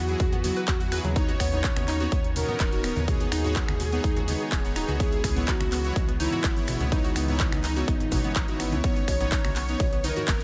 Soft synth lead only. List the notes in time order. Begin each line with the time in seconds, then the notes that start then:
Already playing: F#4
1.16 C#5
1.64 C#5
2.36 A#4
3.08 G#4
5.00 G#4
5.48 F#4
6.20 E4
6.92 D#4
8.84 C#5
9.32 C#5
10.04 A#4